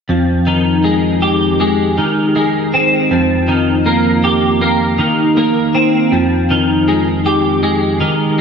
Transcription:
0.09 1.98 F2 soft
0.47 1.96 D#3 soft
0.84 1.59 G#3 soft
1.22 3.14 G4 soft
1.60 2.35 G#3 soft
1.98 3.11 D#3 soft
2.36 3.11 G#3 soft
2.74 3.89 C4 soft
3.11 5.00 F2 soft
3.48 4.97 D#3 soft
3.86 4.60 A#3 soft
4.24 6.13 G4 medium
4.61 5.36 A#3 soft
4.98 6.12 D#3 soft
5.37 6.13 A#3 soft
5.75 6.13 C4 soft
6.12 8.03 F2 soft
6.50 7.99 D#3 soft
6.88 7.63 G#3 soft
7.26 8.41 G4 medium
7.63 8.38 G#3 soft
8.00 8.41 D#3 soft

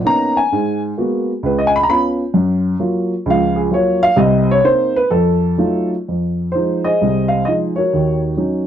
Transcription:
0.04 0.38 A#3 soft
0.04 0.38 B3 soft
0.04 0.38 C#4 soft
0.04 0.38 D#4 medium
0.04 0.36 A#5 loud
0.37 0.79 G#5 medium
0.52 0.92 G#2 medium
0.98 1.30 G#3 soft
0.98 1.30 A#3 soft
0.98 1.31 B3 soft
0.98 1.30 F#4 medium
1.43 1.83 C#2 medium
1.43 1.59 B4 medium
1.58 1.73 D#5 medium
1.67 1.70 G#5 loud
1.76 1.85 B5 loud
1.83 1.88 A#5 medium
1.89 2.21 B3 medium
1.89 2.21 C#4 medium
1.89 2.21 F4 medium
1.89 2.08 B5 loud
2.34 2.74 F#2 medium
2.80 3.12 F#3 medium
2.80 3.13 A#3 soft
2.80 3.13 F4 medium
3.26 3.66 C#2 medium
3.26 3.66 F3 medium
3.30 3.58 F5 loud
3.56 3.71 G#4 medium
3.71 4.04 F#3 medium
3.71 4.04 A#3 soft
3.71 4.05 F4 medium
3.71 4.03 C#5 medium
4.03 4.17 F5 loud
4.16 4.57 C2 medium
4.16 4.57 C3 medium
4.16 4.48 D#5 medium
4.51 4.65 C#5 loud
4.64 4.97 A#3 medium
4.64 4.97 C4 medium
4.64 4.98 D#4 medium
4.64 4.95 C5 medium
4.96 5.11 B4 loud
5.11 5.53 F2 medium
5.11 5.88 A4 medium
5.58 5.93 F#3 medium
5.58 5.93 A3 soft
5.58 5.93 D#4 soft
5.58 5.94 F4 medium
6.08 6.49 F2 medium
6.52 6.87 F3 soft
6.52 6.87 G#3 soft
6.52 6.88 D#4 medium
6.52 6.83 C5 medium
6.84 7.74 G#4 medium
6.84 7.74 C5 medium
6.84 7.33 D#5 medium
7.01 7.41 C2 medium
7.01 7.42 C3 medium
7.28 7.46 F5 medium
7.45 7.80 F3 soft
7.45 7.80 G#3 soft
7.45 7.80 D#4 soft
7.45 7.52 D#5 medium
7.76 8.65 F#4 soft
7.76 8.65 A#4 soft
7.76 8.19 C#5 medium
7.93 8.33 D#2 medium
7.93 8.32 D#3 medium
8.37 8.67 F#3 soft
8.37 8.67 C#4 soft
8.37 8.67 D#4 soft

